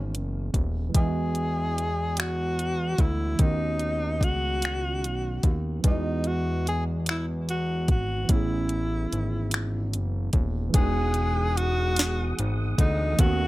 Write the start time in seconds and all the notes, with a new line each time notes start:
Already playing: G#1 E3 A3 B3 C#4 G#4
0.15 F#1, closed hi-hat
0.54 D#1, kick, closed hi-hat
0.89 E3 G#3
0.95 E2 B3 G#4 D#5, kick, closed hi-hat
1.00 E4
1.07 F#4
1.35 closed hi-hat
1.78 closed hi-hat
2.17 F#4, finger snap, closed hi-hat
2.59 closed hi-hat
2.98 D2 E4, kick, closed hi-hat
3.34 D#3 A3
3.39 D#2 B3 D#4, kick, closed hi-hat
3.43 C#4 F#4
3.79 closed hi-hat
4.21 C#2 F#4, kick, closed hi-hat
4.62 finger snap, closed hi-hat
5.04 B1, closed hi-hat
5.43 D#2, kick, closed hi-hat
5.80 E3 G3
5.84 E2 B3 D#4, kick, closed hi-hat
5.88 G#3 F#4 D#5
6.24 F#4, closed hi-hat
6.67 G#4, closed hi-hat
7.06 finger snap, closed hi-hat
7.10 E4
7.49 F#4, closed hi-hat
7.88 G#1 F#4, kick, closed hi-hat
8.24 E3 A3
8.29 A1 B3 C#4 E4, kick, closed hi-hat
8.36 G#4
8.69 closed hi-hat
9.13 G#1, closed hi-hat
9.51 finger snap, closed hi-hat
9.93 F#1, closed hi-hat
10.33 D#1, kick, closed hi-hat
10.70 E3 G#3 G#4
10.74 E1 B3 G#4 F#5 D#6, kick, closed hi-hat
10.78 D#4 F#4
11.14 closed hi-hat
11.57 F#4, closed hi-hat
11.96 snare, closed hi-hat
12.39 G#1, closed hi-hat
12.78 D2 D#4, kick, closed hi-hat
13.13 D#3 A3
13.19 D#2 B3 C#4 F#4 A4 D#5 C#6, kick, closed hi-hat
13.25 F#4